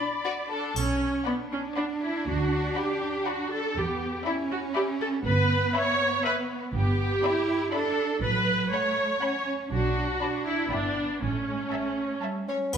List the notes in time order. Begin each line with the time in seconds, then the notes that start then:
Already playing: D5 B5
0.25 F#4 D5
0.50 D4 A4
0.76 B1 C#4, triangle
1.26 B3 D4 D5 F#5 B5
1.52 C#4
1.76 D4 D5 F#5 B5
2.01 E4
2.26 D2 F#4
2.76 G4 D5 F#5 B5
3.26 F#4 D5 F#5 B5
3.52 A4
3.76 E2 B3 G4
4.26 C#4 E4 D5 E5 B5
4.51 F#4
4.76 G4 D5 E5 B5
5.01 A4
5.25 G1 B3 B4
5.75 C#5 E5 B5
6.25 B4 E5 B5
6.74 G1 B3 G4
7.24 E4 D5 E5 B5
7.73 D4 A4 D5 E5 B5
8.23 A1 F#3 B4
8.73 A3 C#5 F#5 B5
9.22 C#4 C#5 F#5 B5
9.72 B1 D4 F#4
10.21 D4 D5 A5 B5
10.47 E4
10.71 G1 B3 D4 E5 G5 B5
11.22 A1 A3 C#4
11.72 A3 E5 A5
12.22 G3 E5 A5
12.48 A3 C#4 C#5
12.73 D2 B3 B4, triangle